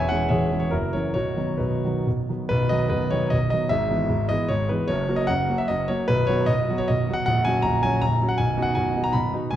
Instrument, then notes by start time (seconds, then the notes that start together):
grand piano
0.09 E3 G#3 C#4 F#5
0.29 E1 E2 G#4 C#5 E5
0.52 E3 G#3 C#4
0.60 C#5
0.71 F#1 F#2 E4 F#4 A#4
0.93 E3 F#3 C#4 C#5
1.14 B0 B1 F#4 C#5
1.37 D#3 F#3 B3
1.58 B0 B1 D#4 F#4 B4
1.84 D#3 F#3 B3
2.07 B0 B1
2.29 D#3 F#3 B3
2.49 B0 B1 B4
2.69 D#3 F#3 B3 D#5
2.90 B0 B1 B4
3.11 D#3 F#3 B3 C#5
3.30 B0 B1 D#5
3.50 D#3 F#3 B3 D#5
3.69 G#1 G#2 E5
3.90 E3 G#3 B3
4.10 G#1 G#2
4.29 E3 G#3 B3 D#5
4.49 G#1 G#2 C#5
4.69 E3 G#3 B3 B4
4.88 F#1 F#2 C#5
5.08 F#3 A#3 F#4
5.16 D#5
5.27 F#1 F#2 F#5
5.48 F#3 A#3 F#4
5.58 E5
5.68 F#1 F#2 D#5
5.88 F#3 A#3 F#4 C#5
6.08 B0 B1 B4
6.27 F#3 B3 F#4 C#5
6.46 B0 B1 D#5
6.70 F#3 B3 F#4
6.78 C#5
6.88 B0 B1 D#5
7.09 F#3 B3 F#4
7.13 F#5
7.26 A#0 A#1 F#5
7.45 F#3 C#4 F#4 G#5
7.62 A#0 A#1 A#5
7.83 F#3 C#4 F#4 G#5
8.02 A#0 A#1 A#5
8.22 F#3 C#4 F#4
8.29 F#5
8.38 B0 B1 G#5
8.57 B3 D#4 F#4
8.62 F#5
8.75 B0 B1 G#5
8.96 B3 D#4 F#4
9.04 A#5
9.13 B0 B1 B5
9.33 B3 D#4 F#4
9.51 E1 E2 G#5